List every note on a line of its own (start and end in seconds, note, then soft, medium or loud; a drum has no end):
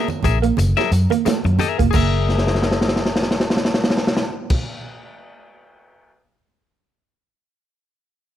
0.08 muted clean electric guitar stroke medium
0.08 tambourine soft
0.08 muted conga soft
0.08 high conga medium
0.23 0.50 A#1 medium
0.23 0.37 G#4 medium
0.23 0.38 A#4 medium
0.23 0.38 E5 medium
0.23 muted clean electric guitar stroke soft
0.23 kick medium
0.23 closed hi-hat medium
0.23 tambourine medium
0.23 low conga medium
0.42 0.54 A#3 medium
0.42 muted clean electric guitar stroke soft
0.42 closed hi-hat medium
0.57 0.72 F#1 medium
0.57 muted clean electric guitar stroke soft
0.57 closed hi-hat medium
0.57 tambourine medium
0.57 muted conga soft
0.57 high conga medium
0.77 0.89 F#3 medium
0.77 0.91 G#4 medium
0.77 0.91 A#4 medium
0.77 0.90 E5 medium
0.77 snare soft
0.77 tambourine soft
0.77 muted conga soft
0.92 1.06 F#2 medium
0.92 muted clean electric guitar stroke soft
0.92 closed hi-hat medium
0.92 tambourine medium
1.10 1.22 A#3 medium
1.10 muted clean electric guitar stroke soft
1.10 closed hi-hat medium
1.10 high conga medium
1.25 1.41 A3 medium
1.25 muted clean electric guitar stroke soft
1.25 muted fingered electric bass stroke soft
1.25 snare loud
1.25 closed hi-hat medium
1.25 tambourine medium
1.25 muted conga soft
1.44 1.56 F#2 loud
1.44 muted clean electric guitar stroke soft
1.44 closed hi-hat soft
1.44 high conga medium
1.59 1.81 G#4 medium
1.59 1.78 A#4 medium
1.59 1.77 E5 medium
1.59 muted clean electric guitar stroke soft
1.59 closed hi-hat medium
1.59 tambourine medium
1.59 high conga medium
1.59 low conga medium
1.78 1.91 F1 medium
1.78 1.90 A#3 medium
1.78 muted clean electric guitar stroke soft
1.78 kick medium
1.78 closed hi-hat medium
1.78 tambourine soft
1.91 4.59 F#1 medium
1.91 3.55 A#3 medium
1.91 5.14 G#4 medium
1.91 5.14 A#4 medium
1.91 kick loud
1.91 tambourine medium
1.91 high conga medium
1.95 5.14 E5 medium
1.95 crash loud
2.29 snare soft
2.38 snare soft
2.47 snare medium
2.55 snare soft
2.62 snare medium
2.71 snare medium
2.81 snare medium
2.88 snare medium
2.96 snare medium
3.06 snare medium
3.16 snare medium
3.23 snare medium
3.31 snare medium
3.40 snare medium
3.50 snare medium
3.57 snare medium
3.65 snare medium
3.74 snare medium
3.84 snare medium
3.90 snare loud
3.97 snare medium
4.07 snare medium
4.17 snare loud
4.50 kick loud
4.50 crash loud